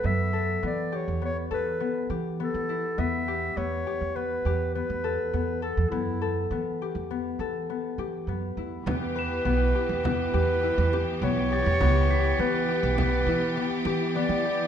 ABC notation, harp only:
X:1
M:5/4
L:1/8
Q:1/4=102
K:Edor
V:1 name="Harp"
B, A B, G B, A B, G B, E | B, G B, G B, G B, A B, A | B, A B, G B, A B, G B, E | B, B B, G B, G E G B, G |
B, G B, G B, E B, G B, G |]